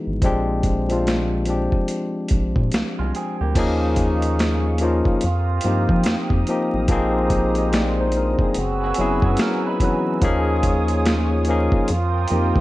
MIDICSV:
0, 0, Header, 1, 7, 480
1, 0, Start_track
1, 0, Tempo, 833333
1, 127, Time_signature, 4, 2, 24, 8
1, 7261, End_track
2, 0, Start_track
2, 0, Title_t, "Analog synth pad"
2, 0, Program_c, 0, 89
2, 2044, Note_on_c, 0, 77, 65
2, 2047, Note_on_c, 0, 68, 70
2, 2047, Note_on_c, 0, 85, 65
2, 2047, Note_on_c, 0, 87, 84
2, 2997, Note_off_c, 0, 68, 0
2, 2998, Note_off_c, 0, 85, 0
2, 3011, Note_on_c, 0, 82, 69
2, 3012, Note_on_c, 0, 67, 77
2, 3946, Note_off_c, 0, 77, 0
2, 3960, Note_off_c, 0, 67, 0
2, 3969, Note_on_c, 0, 72, 68
2, 3975, Note_on_c, 0, 56, 78
2, 4904, Note_off_c, 0, 87, 0
2, 4910, Note_off_c, 0, 82, 0
2, 4918, Note_off_c, 0, 72, 0
2, 4921, Note_off_c, 0, 56, 0
2, 4924, Note_on_c, 0, 80, 69
2, 4925, Note_on_c, 0, 88, 85
2, 4926, Note_on_c, 0, 66, 77
2, 4926, Note_on_c, 0, 71, 67
2, 5876, Note_off_c, 0, 80, 0
2, 5876, Note_off_c, 0, 88, 0
2, 5877, Note_off_c, 0, 66, 0
2, 5877, Note_off_c, 0, 71, 0
2, 5881, Note_on_c, 0, 87, 84
2, 5882, Note_on_c, 0, 73, 69
2, 5883, Note_on_c, 0, 80, 71
2, 5885, Note_on_c, 0, 65, 79
2, 6834, Note_off_c, 0, 87, 0
2, 6835, Note_off_c, 0, 73, 0
2, 6835, Note_off_c, 0, 80, 0
2, 6848, Note_on_c, 0, 70, 70
2, 6851, Note_on_c, 0, 87, 85
2, 6852, Note_on_c, 0, 79, 70
2, 7261, Note_off_c, 0, 65, 0
2, 7261, Note_off_c, 0, 70, 0
2, 7261, Note_off_c, 0, 79, 0
2, 7261, Note_off_c, 0, 87, 0
2, 7261, End_track
3, 0, Start_track
3, 0, Title_t, "Clean electric guitar"
3, 0, Program_c, 1, 27
3, 1721, Note_on_c, 1, 65, 66
3, 1728, Note_on_c, 1, 56, 57
3, 1806, Note_off_c, 1, 65, 0
3, 1809, Note_off_c, 1, 56, 0
3, 1821, Note_on_c, 1, 60, 58
3, 1821, Note_on_c, 1, 68, 74
3, 1954, Note_off_c, 1, 68, 0
3, 1955, Note_off_c, 1, 60, 0
3, 1964, Note_on_c, 1, 67, 66
3, 1966, Note_on_c, 1, 58, 54
3, 2187, Note_off_c, 1, 67, 0
3, 2189, Note_off_c, 1, 58, 0
3, 5091, Note_on_c, 1, 66, 77
3, 5095, Note_on_c, 1, 58, 62
3, 5171, Note_off_c, 1, 66, 0
3, 5173, Note_off_c, 1, 58, 0
3, 5180, Note_on_c, 1, 64, 88
3, 5184, Note_on_c, 1, 56, 71
3, 5314, Note_off_c, 1, 64, 0
3, 5316, Note_off_c, 1, 56, 0
3, 5325, Note_on_c, 1, 68, 80
3, 5328, Note_on_c, 1, 59, 68
3, 5408, Note_off_c, 1, 68, 0
3, 5410, Note_off_c, 1, 59, 0
3, 5424, Note_on_c, 1, 61, 70
3, 5425, Note_on_c, 1, 70, 88
3, 5556, Note_off_c, 1, 61, 0
3, 5556, Note_off_c, 1, 70, 0
3, 5568, Note_on_c, 1, 71, 75
3, 5571, Note_on_c, 1, 63, 66
3, 5877, Note_off_c, 1, 71, 0
3, 5879, Note_off_c, 1, 63, 0
3, 7261, End_track
4, 0, Start_track
4, 0, Title_t, "Tine electric piano"
4, 0, Program_c, 2, 4
4, 0, Control_c, 2, 64, 127
4, 0, Note_on_c, 2, 52, 75
4, 0, Note_on_c, 2, 56, 63
4, 0, Note_on_c, 2, 59, 72
4, 0, Note_on_c, 2, 63, 66
4, 0, Note_on_c, 2, 68, 75
4, 132, Note_on_c, 2, 53, 96
4, 135, Note_off_c, 2, 52, 0
4, 135, Note_off_c, 2, 56, 0
4, 135, Control_c, 2, 64, 0
4, 135, Note_on_c, 2, 56, 94
4, 136, Note_off_c, 2, 63, 0
4, 137, Note_off_c, 2, 68, 0
4, 139, Note_off_c, 2, 59, 0
4, 140, Note_on_c, 2, 60, 92
4, 144, Note_on_c, 2, 62, 90
4, 148, Note_on_c, 2, 67, 106
4, 242, Control_c, 2, 64, 127
4, 469, Note_off_c, 2, 53, 0
4, 471, Note_off_c, 2, 56, 0
4, 474, Note_off_c, 2, 60, 0
4, 476, Note_off_c, 2, 62, 0
4, 478, Note_off_c, 2, 67, 0
4, 512, Note_on_c, 2, 53, 69
4, 518, Note_on_c, 2, 56, 64
4, 523, Note_on_c, 2, 60, 66
4, 527, Note_on_c, 2, 62, 61
4, 531, Note_on_c, 2, 65, 77
4, 816, Note_off_c, 2, 53, 0
4, 819, Note_off_c, 2, 56, 0
4, 821, Note_off_c, 2, 60, 0
4, 823, Note_off_c, 2, 62, 0
4, 826, Note_off_c, 2, 65, 0
4, 845, Note_on_c, 2, 53, 60
4, 848, Note_on_c, 2, 56, 55
4, 855, Note_on_c, 2, 60, 56
4, 859, Note_on_c, 2, 62, 60
4, 864, Note_on_c, 2, 67, 76
4, 1727, Note_off_c, 2, 53, 0
4, 1728, Note_off_c, 2, 56, 0
4, 1732, Note_off_c, 2, 60, 0
4, 1734, Note_off_c, 2, 62, 0
4, 1736, Note_off_c, 2, 67, 0
4, 2051, Note_on_c, 2, 53, 110
4, 2055, Control_c, 2, 64, 0
4, 2055, Note_on_c, 2, 58, 104
4, 2058, Note_on_c, 2, 61, 91
4, 2062, Note_on_c, 2, 63, 99
4, 2067, Note_on_c, 2, 68, 123
4, 2149, Control_c, 2, 64, 127
4, 2710, Note_off_c, 2, 53, 0
4, 2711, Note_off_c, 2, 58, 0
4, 2713, Note_off_c, 2, 61, 0
4, 2715, Note_off_c, 2, 63, 0
4, 2717, Note_off_c, 2, 68, 0
4, 2771, Note_on_c, 2, 53, 83
4, 2773, Note_on_c, 2, 58, 79
4, 2778, Note_on_c, 2, 61, 72
4, 2782, Note_on_c, 2, 63, 73
4, 2788, Note_on_c, 2, 65, 85
4, 3009, Note_off_c, 2, 53, 0
4, 3010, Note_off_c, 2, 58, 0
4, 3012, Note_off_c, 2, 61, 0
4, 3014, Note_off_c, 2, 63, 0
4, 3014, Control_c, 2, 64, 0
4, 3017, Note_off_c, 2, 65, 0
4, 3118, Control_c, 2, 64, 127
4, 3248, Note_on_c, 2, 53, 81
4, 3253, Note_on_c, 2, 58, 70
4, 3257, Note_on_c, 2, 60, 72
4, 3261, Note_on_c, 2, 63, 70
4, 3267, Note_on_c, 2, 67, 86
4, 3688, Note_off_c, 2, 53, 0
4, 3690, Note_off_c, 2, 58, 0
4, 3692, Note_off_c, 2, 60, 0
4, 3695, Note_off_c, 2, 63, 0
4, 3697, Note_off_c, 2, 67, 0
4, 3733, Note_on_c, 2, 53, 73
4, 3738, Note_on_c, 2, 58, 70
4, 3742, Note_on_c, 2, 60, 68
4, 3744, Note_on_c, 2, 63, 70
4, 3749, Note_on_c, 2, 67, 84
4, 3950, Note_off_c, 2, 53, 0
4, 3953, Note_off_c, 2, 58, 0
4, 3954, Note_off_c, 2, 60, 0
4, 3956, Note_off_c, 2, 63, 0
4, 3958, Note_off_c, 2, 67, 0
4, 3970, Note_on_c, 2, 53, 106
4, 3973, Control_c, 2, 64, 0
4, 3973, Note_on_c, 2, 58, 93
4, 3979, Note_on_c, 2, 60, 102
4, 3984, Note_on_c, 2, 63, 94
4, 3987, Note_on_c, 2, 68, 115
4, 4087, Control_c, 2, 64, 127
4, 4213, Note_off_c, 2, 60, 0
4, 4215, Note_off_c, 2, 63, 0
4, 4215, Note_off_c, 2, 68, 0
4, 4220, Note_on_c, 2, 77, 60
4, 4222, Note_on_c, 2, 68, 52
4, 4354, Note_off_c, 2, 77, 0
4, 4355, Note_off_c, 2, 68, 0
4, 4367, Note_on_c, 2, 75, 65
4, 4372, Note_on_c, 2, 67, 48
4, 4449, Note_off_c, 2, 75, 0
4, 4452, Note_off_c, 2, 67, 0
4, 4457, Note_on_c, 2, 74, 65
4, 4460, Note_on_c, 2, 65, 54
4, 4593, Note_off_c, 2, 74, 0
4, 4594, Note_off_c, 2, 65, 0
4, 4612, Note_on_c, 2, 72, 66
4, 4614, Note_on_c, 2, 63, 59
4, 4629, Note_off_c, 2, 53, 0
4, 4631, Note_off_c, 2, 58, 0
4, 4692, Note_off_c, 2, 63, 0
4, 4692, Note_off_c, 2, 72, 0
4, 4705, Note_on_c, 2, 70, 68
4, 4709, Note_on_c, 2, 62, 55
4, 4837, Note_off_c, 2, 70, 0
4, 4839, Note_off_c, 2, 62, 0
4, 4850, Note_on_c, 2, 68, 65
4, 4855, Note_on_c, 2, 60, 54
4, 4935, Control_c, 2, 64, 0
4, 5047, Control_c, 2, 64, 127
4, 5071, Note_off_c, 2, 68, 0
4, 5074, Note_off_c, 2, 60, 0
4, 5173, Note_on_c, 2, 54, 91
4, 5180, Note_on_c, 2, 59, 73
4, 5181, Note_on_c, 2, 61, 76
4, 5187, Note_on_c, 2, 64, 75
4, 5191, Note_on_c, 2, 68, 88
4, 5611, Note_off_c, 2, 54, 0
4, 5614, Note_off_c, 2, 59, 0
4, 5615, Note_off_c, 2, 61, 0
4, 5617, Note_off_c, 2, 64, 0
4, 5619, Note_off_c, 2, 68, 0
4, 5651, Note_on_c, 2, 54, 73
4, 5656, Note_on_c, 2, 59, 71
4, 5660, Note_on_c, 2, 61, 66
4, 5662, Note_on_c, 2, 52, 69
4, 5670, Note_on_c, 2, 71, 83
4, 5869, Note_off_c, 2, 54, 0
4, 5872, Note_off_c, 2, 59, 0
4, 5874, Note_off_c, 2, 61, 0
4, 5875, Note_off_c, 2, 52, 0
4, 5878, Note_off_c, 2, 71, 0
4, 5885, Note_on_c, 2, 53, 109
4, 5890, Note_on_c, 2, 58, 103
4, 5894, Control_c, 2, 64, 0
4, 5895, Note_on_c, 2, 61, 99
4, 5898, Note_on_c, 2, 63, 101
4, 5901, Note_on_c, 2, 68, 124
4, 6002, Control_c, 2, 64, 127
4, 6546, Note_off_c, 2, 53, 0
4, 6549, Note_off_c, 2, 58, 0
4, 6551, Note_off_c, 2, 61, 0
4, 6553, Note_off_c, 2, 63, 0
4, 6554, Note_off_c, 2, 68, 0
4, 6610, Note_on_c, 2, 53, 78
4, 6616, Note_on_c, 2, 58, 78
4, 6618, Note_on_c, 2, 61, 76
4, 6624, Note_on_c, 2, 63, 74
4, 6628, Note_on_c, 2, 68, 94
4, 6848, Note_off_c, 2, 53, 0
4, 6852, Note_off_c, 2, 58, 0
4, 6852, Note_off_c, 2, 61, 0
4, 6853, Control_c, 2, 64, 0
4, 6856, Note_off_c, 2, 63, 0
4, 6857, Note_off_c, 2, 68, 0
4, 6943, Control_c, 2, 64, 127
4, 7088, Note_on_c, 2, 53, 78
4, 7089, Note_on_c, 2, 58, 74
4, 7095, Note_on_c, 2, 60, 67
4, 7099, Note_on_c, 2, 63, 71
4, 7103, Note_on_c, 2, 67, 86
4, 7261, Note_off_c, 2, 53, 0
4, 7261, Note_off_c, 2, 58, 0
4, 7261, Note_off_c, 2, 60, 0
4, 7261, Note_off_c, 2, 63, 0
4, 7261, Note_off_c, 2, 67, 0
4, 7261, End_track
5, 0, Start_track
5, 0, Title_t, "Trombone section"
5, 0, Program_c, 3, 61
5, 2049, Note_on_c, 3, 58, 68
5, 2051, Note_on_c, 3, 56, 63
5, 2052, Note_on_c, 3, 63, 73
5, 2754, Note_off_c, 3, 58, 0
5, 2755, Note_off_c, 3, 56, 0
5, 2755, Note_off_c, 3, 63, 0
5, 3008, Note_on_c, 3, 60, 65
5, 3011, Note_on_c, 3, 58, 63
5, 3011, Note_on_c, 3, 65, 78
5, 3713, Note_off_c, 3, 60, 0
5, 3714, Note_off_c, 3, 65, 0
5, 3715, Note_off_c, 3, 58, 0
5, 3967, Note_on_c, 3, 67, 75
5, 3969, Note_on_c, 3, 60, 65
5, 3969, Note_on_c, 3, 63, 74
5, 4673, Note_off_c, 3, 60, 0
5, 4673, Note_off_c, 3, 67, 0
5, 4674, Note_off_c, 3, 63, 0
5, 4927, Note_on_c, 3, 61, 72
5, 4931, Note_on_c, 3, 59, 71
5, 4931, Note_on_c, 3, 66, 74
5, 5633, Note_off_c, 3, 61, 0
5, 5634, Note_off_c, 3, 59, 0
5, 5634, Note_off_c, 3, 66, 0
5, 5889, Note_on_c, 3, 65, 65
5, 5891, Note_on_c, 3, 61, 69
5, 5891, Note_on_c, 3, 68, 74
5, 6593, Note_off_c, 3, 65, 0
5, 6594, Note_off_c, 3, 61, 0
5, 6594, Note_off_c, 3, 68, 0
5, 6845, Note_on_c, 3, 60, 67
5, 6846, Note_on_c, 3, 58, 67
5, 6846, Note_on_c, 3, 65, 83
5, 7261, Note_off_c, 3, 58, 0
5, 7261, Note_off_c, 3, 60, 0
5, 7261, Note_off_c, 3, 65, 0
5, 7261, End_track
6, 0, Start_track
6, 0, Title_t, "Analog synth bass"
6, 0, Program_c, 4, 38
6, 41, Note_on_c, 4, 32, 83
6, 131, Note_on_c, 4, 34, 104
6, 139, Note_off_c, 4, 32, 0
6, 973, Note_off_c, 4, 34, 0
6, 1335, Note_on_c, 4, 34, 83
6, 1461, Note_off_c, 4, 34, 0
6, 1478, Note_on_c, 4, 46, 82
6, 1557, Note_off_c, 4, 46, 0
6, 1576, Note_on_c, 4, 36, 44
6, 1633, Note_off_c, 4, 36, 0
6, 1724, Note_on_c, 4, 36, 80
6, 1801, Note_off_c, 4, 36, 0
6, 1963, Note_on_c, 4, 38, 93
6, 2040, Note_off_c, 4, 38, 0
6, 2052, Note_on_c, 4, 39, 113
6, 2894, Note_off_c, 4, 39, 0
6, 3017, Note_on_c, 4, 41, 103
6, 3223, Note_off_c, 4, 41, 0
6, 3253, Note_on_c, 4, 43, 88
6, 3380, Note_off_c, 4, 43, 0
6, 3398, Note_on_c, 4, 53, 101
6, 3477, Note_off_c, 4, 53, 0
6, 3493, Note_on_c, 4, 41, 48
6, 3550, Note_off_c, 4, 41, 0
6, 3634, Note_on_c, 4, 41, 90
6, 3715, Note_off_c, 4, 41, 0
6, 3881, Note_on_c, 4, 33, 100
6, 3959, Note_off_c, 4, 33, 0
6, 3969, Note_on_c, 4, 34, 108
6, 4812, Note_off_c, 4, 34, 0
6, 4936, Note_on_c, 4, 30, 96
6, 5142, Note_off_c, 4, 30, 0
6, 5176, Note_on_c, 4, 30, 96
6, 5301, Note_off_c, 4, 30, 0
6, 5318, Note_on_c, 4, 42, 95
6, 5397, Note_off_c, 4, 42, 0
6, 5891, Note_on_c, 4, 39, 107
6, 6734, Note_off_c, 4, 39, 0
6, 6854, Note_on_c, 4, 41, 102
6, 7061, Note_off_c, 4, 41, 0
6, 7092, Note_on_c, 4, 41, 93
6, 7219, Note_off_c, 4, 41, 0
6, 7238, Note_on_c, 4, 53, 89
6, 7261, Note_off_c, 4, 53, 0
6, 7261, End_track
7, 0, Start_track
7, 0, Title_t, "Drums"
7, 126, Note_on_c, 9, 36, 94
7, 126, Note_on_c, 9, 42, 68
7, 183, Note_off_c, 9, 36, 0
7, 184, Note_off_c, 9, 42, 0
7, 365, Note_on_c, 9, 42, 57
7, 366, Note_on_c, 9, 36, 77
7, 422, Note_off_c, 9, 42, 0
7, 424, Note_off_c, 9, 36, 0
7, 516, Note_on_c, 9, 42, 43
7, 574, Note_off_c, 9, 42, 0
7, 616, Note_on_c, 9, 42, 54
7, 621, Note_on_c, 9, 38, 90
7, 673, Note_off_c, 9, 42, 0
7, 678, Note_off_c, 9, 38, 0
7, 838, Note_on_c, 9, 42, 53
7, 895, Note_off_c, 9, 42, 0
7, 992, Note_on_c, 9, 36, 80
7, 1050, Note_off_c, 9, 36, 0
7, 1083, Note_on_c, 9, 42, 80
7, 1141, Note_off_c, 9, 42, 0
7, 1316, Note_on_c, 9, 42, 69
7, 1330, Note_on_c, 9, 36, 81
7, 1374, Note_off_c, 9, 42, 0
7, 1388, Note_off_c, 9, 36, 0
7, 1473, Note_on_c, 9, 36, 86
7, 1531, Note_off_c, 9, 36, 0
7, 1564, Note_on_c, 9, 42, 68
7, 1579, Note_on_c, 9, 38, 99
7, 1622, Note_off_c, 9, 42, 0
7, 1636, Note_off_c, 9, 38, 0
7, 1813, Note_on_c, 9, 42, 51
7, 1870, Note_off_c, 9, 42, 0
7, 2047, Note_on_c, 9, 36, 101
7, 2047, Note_on_c, 9, 49, 87
7, 2048, Note_on_c, 9, 42, 77
7, 2104, Note_off_c, 9, 36, 0
7, 2105, Note_off_c, 9, 49, 0
7, 2106, Note_off_c, 9, 42, 0
7, 2282, Note_on_c, 9, 42, 67
7, 2286, Note_on_c, 9, 36, 85
7, 2340, Note_off_c, 9, 42, 0
7, 2343, Note_off_c, 9, 36, 0
7, 2432, Note_on_c, 9, 42, 53
7, 2490, Note_off_c, 9, 42, 0
7, 2530, Note_on_c, 9, 42, 60
7, 2535, Note_on_c, 9, 38, 107
7, 2588, Note_off_c, 9, 42, 0
7, 2593, Note_off_c, 9, 38, 0
7, 2754, Note_on_c, 9, 42, 62
7, 2812, Note_off_c, 9, 42, 0
7, 2911, Note_on_c, 9, 36, 94
7, 2968, Note_off_c, 9, 36, 0
7, 3000, Note_on_c, 9, 42, 89
7, 3058, Note_off_c, 9, 42, 0
7, 3230, Note_on_c, 9, 42, 81
7, 3288, Note_off_c, 9, 42, 0
7, 3393, Note_on_c, 9, 36, 99
7, 3450, Note_off_c, 9, 36, 0
7, 3476, Note_on_c, 9, 42, 91
7, 3491, Note_on_c, 9, 38, 108
7, 3534, Note_off_c, 9, 42, 0
7, 3549, Note_off_c, 9, 38, 0
7, 3630, Note_on_c, 9, 36, 91
7, 3687, Note_off_c, 9, 36, 0
7, 3726, Note_on_c, 9, 42, 61
7, 3783, Note_off_c, 9, 42, 0
7, 3963, Note_on_c, 9, 42, 77
7, 3965, Note_on_c, 9, 36, 106
7, 4020, Note_off_c, 9, 42, 0
7, 4022, Note_off_c, 9, 36, 0
7, 4205, Note_on_c, 9, 36, 85
7, 4205, Note_on_c, 9, 42, 66
7, 4262, Note_off_c, 9, 42, 0
7, 4263, Note_off_c, 9, 36, 0
7, 4349, Note_on_c, 9, 42, 51
7, 4407, Note_off_c, 9, 42, 0
7, 4451, Note_on_c, 9, 42, 66
7, 4456, Note_on_c, 9, 38, 114
7, 4508, Note_off_c, 9, 42, 0
7, 4513, Note_off_c, 9, 38, 0
7, 4676, Note_on_c, 9, 42, 57
7, 4733, Note_off_c, 9, 42, 0
7, 4831, Note_on_c, 9, 36, 94
7, 4888, Note_off_c, 9, 36, 0
7, 4921, Note_on_c, 9, 42, 90
7, 4979, Note_off_c, 9, 42, 0
7, 5152, Note_on_c, 9, 42, 77
7, 5209, Note_off_c, 9, 42, 0
7, 5313, Note_on_c, 9, 36, 100
7, 5370, Note_off_c, 9, 36, 0
7, 5396, Note_on_c, 9, 42, 85
7, 5411, Note_on_c, 9, 38, 108
7, 5454, Note_off_c, 9, 42, 0
7, 5468, Note_off_c, 9, 38, 0
7, 5645, Note_on_c, 9, 36, 84
7, 5647, Note_on_c, 9, 42, 65
7, 5702, Note_off_c, 9, 36, 0
7, 5704, Note_off_c, 9, 42, 0
7, 5884, Note_on_c, 9, 42, 80
7, 5885, Note_on_c, 9, 36, 105
7, 5942, Note_off_c, 9, 42, 0
7, 5943, Note_off_c, 9, 36, 0
7, 6123, Note_on_c, 9, 42, 68
7, 6125, Note_on_c, 9, 36, 81
7, 6181, Note_off_c, 9, 42, 0
7, 6182, Note_off_c, 9, 36, 0
7, 6269, Note_on_c, 9, 42, 54
7, 6326, Note_off_c, 9, 42, 0
7, 6368, Note_on_c, 9, 42, 68
7, 6373, Note_on_c, 9, 38, 111
7, 6425, Note_off_c, 9, 42, 0
7, 6430, Note_off_c, 9, 38, 0
7, 6594, Note_on_c, 9, 42, 64
7, 6651, Note_off_c, 9, 42, 0
7, 6750, Note_on_c, 9, 36, 92
7, 6808, Note_off_c, 9, 36, 0
7, 6842, Note_on_c, 9, 42, 93
7, 6900, Note_off_c, 9, 42, 0
7, 7071, Note_on_c, 9, 42, 77
7, 7129, Note_off_c, 9, 42, 0
7, 7232, Note_on_c, 9, 36, 95
7, 7261, Note_off_c, 9, 36, 0
7, 7261, End_track
0, 0, End_of_file